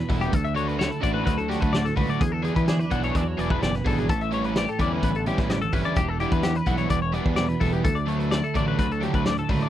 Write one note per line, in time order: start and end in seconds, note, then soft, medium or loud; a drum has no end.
0.00 0.29 E2 medium
0.00 0.29 B2 medium
0.00 0.30 E3 medium
0.00 0.82 D4 medium
0.09 0.29 E1 medium
0.09 0.34 E3 medium
0.09 0.34 G3 medium
0.09 0.33 B3 medium
0.09 0.33 E4 medium
0.09 0.22 A4 medium
0.09 kick medium
0.09 open hi-hat medium
0.21 0.34 G4 medium
0.21 closed hi-hat soft
0.29 2.19 D2 medium
0.29 0.89 D2 loud
0.29 kick loud
0.29 closed hi-hat loud
0.34 0.46 A4 medium
0.45 0.56 E5 medium
0.45 closed hi-hat soft
0.55 0.87 D3 medium
0.55 0.87 A3 medium
0.55 0.87 D4 medium
0.55 0.87 F#4 loud
0.55 0.68 C#5 medium
0.55 closed hi-hat medium
0.68 0.79 B4 medium
0.68 closed hi-hat soft
0.79 2.18 E4 medium
0.79 0.91 C#5 medium
0.79 snare loud
0.79 closed hi-hat medium
0.91 1.03 A4 medium
0.91 closed hi-hat soft
1.00 1.22 A1 medium
1.00 2.90 D3 medium
1.00 1.34 D3 medium
1.00 1.34 A3 medium
1.00 1.34 D4 medium
1.00 1.34 F#4 medium
1.00 1.13 D5 medium
1.00 kick medium
1.00 closed hi-hat medium
1.14 1.25 B4 medium
1.24 1.55 D2 medium
1.24 3.13 F#3 medium
1.24 1.39 B4 medium
1.24 kick medium
1.24 closed hi-hat loud
1.38 1.50 A4 medium
1.38 closed hi-hat soft
1.49 1.81 D3 medium
1.49 1.81 A3 medium
1.49 1.81 D4 medium
1.49 1.81 F#4 medium
1.49 1.61 G4 medium
1.49 snare soft
1.49 closed hi-hat medium
1.61 1.90 D2 medium
1.61 1.74 B4 medium
1.61 kick medium
1.61 closed hi-hat soft
1.72 2.20 A2 medium
1.72 1.86 D5 medium
1.72 snare loud
1.72 closed hi-hat medium
1.85 1.96 A4 medium
1.85 snare soft
1.85 closed hi-hat medium
1.96 2.07 C#2 medium
1.96 2.21 D3 medium
1.96 2.21 A3 medium
1.96 2.21 D4 medium
1.96 2.21 F#4 medium
1.96 2.09 B4 medium
1.96 kick medium
1.96 open hi-hat medium
2.09 2.22 D5 medium
2.09 closed hi-hat soft
2.19 4.05 E2 medium
2.19 2.49 E2 medium
2.19 2.32 G#4 loud
2.19 kick loud
2.19 closed hi-hat loud
2.32 2.44 A4 medium
2.43 2.75 E3 medium
2.43 2.75 B3 medium
2.43 2.75 D4 medium
2.43 2.74 G#4 loud
2.43 2.56 G#4 medium
2.43 closed hi-hat medium
2.56 2.84 E3 medium
2.56 2.67 B4 medium
2.56 kick medium
2.56 closed hi-hat soft
2.68 4.56 D4 medium
2.68 2.79 G#4 medium
2.68 snare loud
2.68 closed hi-hat medium
2.79 2.92 B4 medium
2.79 closed hi-hat soft
2.91 3.10 B1 medium
2.91 4.80 E3 medium
2.91 3.22 E3 medium
2.91 3.22 B3 medium
2.91 3.22 D4 medium
2.91 3.22 G#4 medium
2.91 3.04 F#5 medium
2.91 kick medium
2.91 closed hi-hat medium
3.03 3.16 C#5 medium
3.03 closed hi-hat soft
3.15 3.34 E2 loud
3.15 4.10 F#3 medium
3.15 3.28 D5 medium
3.15 kick medium
3.15 closed hi-hat medium
3.28 3.39 C#5 medium
3.37 3.60 E1 medium
3.37 3.69 E3 medium
3.37 3.69 B3 medium
3.37 3.69 D4 medium
3.37 3.69 G#4 medium
3.37 3.51 D5 medium
3.37 closed hi-hat medium
3.50 3.63 B4 medium
3.50 kick medium
3.62 3.83 F#1 medium
3.62 4.06 B2 medium
3.62 3.75 D5 medium
3.62 snare loud
3.62 closed hi-hat medium
3.74 3.87 B4 medium
3.74 snare soft
3.74 closed hi-hat soft
3.85 4.07 G#1 medium
3.85 4.09 E3 medium
3.85 4.09 B3 medium
3.85 4.09 D4 medium
3.85 4.09 G#4 medium
3.85 3.99 A4 medium
3.85 kick medium
3.85 open hi-hat medium
3.98 4.09 G#4 medium
3.98 closed hi-hat soft
4.09 4.65 A1 medium
4.09 4.80 A2 medium
4.09 4.21 A4 loud
4.09 kick loud
4.09 closed hi-hat medium
4.21 4.33 E5 medium
4.21 closed hi-hat soft
4.32 4.63 E3 medium
4.32 4.63 G3 medium
4.32 4.63 C#4 medium
4.32 4.63 E4 medium
4.32 4.45 C#5 medium
4.32 closed hi-hat medium
4.44 4.57 B4 medium
4.44 closed hi-hat soft
4.56 5.95 G4 medium
4.56 4.69 D5 medium
4.56 snare loud
4.56 closed hi-hat loud
4.68 4.80 A4 medium
4.68 closed hi-hat soft
4.79 4.98 E2 medium
4.79 5.97 D3 medium
4.79 5.11 E3 medium
4.79 5.11 G3 medium
4.79 5.10 C#4 medium
4.79 5.10 E4 medium
4.79 4.92 D5 medium
4.79 kick medium
4.79 closed hi-hat medium
4.92 5.03 B4 medium
5.02 5.31 A1 loud
5.02 5.94 B3 medium
5.02 5.15 B4 medium
5.02 kick medium
5.02 closed hi-hat medium
5.15 5.27 A4 medium
5.15 closed hi-hat soft
5.26 5.58 E3 medium
5.26 5.58 G3 medium
5.26 5.57 C#4 medium
5.26 5.57 E4 loud
5.26 5.39 G4 medium
5.26 closed hi-hat medium
5.38 5.66 A1 medium
5.38 5.50 B4 medium
5.38 kick medium
5.38 snare soft
5.38 closed hi-hat soft
5.50 5.94 E2 medium
5.50 5.61 D5 medium
5.50 snare loud
5.50 closed hi-hat medium
5.62 5.73 A4 medium
5.62 closed hi-hat soft
5.72 5.82 G1 medium
5.72 5.97 E3 medium
5.72 5.97 G3 medium
5.72 5.97 C#4 medium
5.72 5.97 E4 medium
5.72 5.85 B4 medium
5.72 kick medium
5.72 open hi-hat medium
5.84 5.97 D5 medium
5.84 closed hi-hat soft
5.96 6.25 E1 medium
5.96 7.82 E2 medium
5.96 6.65 E3 medium
5.96 7.14 D4 medium
5.96 6.09 G4 loud
5.96 kick loud
5.96 closed hi-hat medium
6.00 6.45 G4 medium
6.09 6.20 A4 medium
6.20 6.52 E3 medium
6.20 6.52 G3 medium
6.20 6.51 B3 medium
6.20 6.51 E4 loud
6.20 6.32 G4 medium
6.20 closed hi-hat medium
6.31 6.60 E2 medium
6.31 6.44 B4 medium
6.31 kick medium
6.31 closed hi-hat soft
6.43 6.56 G4 medium
6.43 snare loud
6.43 closed hi-hat loud
6.55 6.68 B4 medium
6.55 closed hi-hat soft
6.66 6.85 B1 medium
6.66 7.82 E3 medium
6.66 6.98 E3 medium
6.66 6.98 G3 medium
6.66 6.98 B3 medium
6.66 6.98 E4 medium
6.66 6.78 F#5 medium
6.66 kick medium
6.66 closed hi-hat medium
6.78 6.90 C#5 medium
6.78 closed hi-hat medium
6.90 7.18 E1 loud
6.90 7.02 D5 medium
6.90 kick medium
6.90 closed hi-hat loud
7.02 7.13 C#5 medium
7.13 7.45 E3 medium
7.13 7.45 G3 medium
7.13 7.45 B3 medium
7.13 8.37 D4 medium
7.13 7.44 E4 medium
7.13 7.26 D5 medium
7.13 closed hi-hat medium
7.26 7.54 E2 medium
7.26 7.36 B4 medium
7.26 kick medium
7.36 7.82 B2 medium
7.36 7.49 D5 medium
7.36 snare loud
7.36 closed hi-hat medium
7.49 7.61 B4 medium
7.49 closed hi-hat soft
7.60 7.80 E1 medium
7.60 7.85 E3 medium
7.60 7.85 G3 medium
7.60 7.85 B3 medium
7.60 7.84 E4 medium
7.60 7.73 A4 medium
7.60 kick medium
7.60 open hi-hat medium
7.72 7.84 G4 medium
7.72 closed hi-hat soft
7.84 8.40 D2 medium
7.84 9.69 D2 medium
7.84 7.96 A4 loud
7.84 kick loud
7.84 closed hi-hat loud
7.95 8.08 D5 medium
8.07 8.39 D3 medium
8.07 8.39 F#3 medium
8.07 8.39 A3 loud
8.07 8.38 D4 loud
8.07 8.19 C#5 medium
8.07 closed hi-hat medium
8.19 8.31 B4 medium
8.19 closed hi-hat soft
8.31 9.69 E4 medium
8.31 8.43 D5 medium
8.31 snare loud
8.31 closed hi-hat loud
8.44 8.55 A4 medium
8.44 closed hi-hat soft
8.54 8.74 A1 medium
8.54 9.69 D3 medium
8.54 8.86 D3 medium
8.54 8.86 F#3 medium
8.54 8.86 A3 medium
8.54 8.86 D4 medium
8.54 8.68 D5 medium
8.54 kick medium
8.54 closed hi-hat medium
8.68 8.78 B4 medium
8.78 9.06 D2 loud
8.78 9.69 F#3 medium
8.78 8.91 B4 medium
8.78 kick medium
8.78 closed hi-hat medium
8.91 9.04 A4 medium
8.91 closed hi-hat soft
9.01 9.33 D3 medium
9.01 9.33 F#3 medium
9.01 9.33 A3 medium
9.01 9.32 D4 medium
9.01 9.15 G4 medium
9.01 closed hi-hat medium
9.14 9.42 D2 medium
9.14 9.26 B4 medium
9.14 kick medium
9.14 closed hi-hat soft
9.25 9.69 A2 medium
9.25 9.38 D5 medium
9.25 snare loud
9.25 closed hi-hat medium
9.37 9.50 A4 medium
9.37 closed hi-hat soft
9.49 9.59 C#2 medium
9.49 9.69 D3 medium
9.49 9.69 F#3 medium
9.49 9.69 A3 medium
9.49 9.69 D4 medium
9.49 9.62 B4 medium
9.49 kick medium
9.49 open hi-hat medium
9.60 9.69 D5 medium
9.60 closed hi-hat soft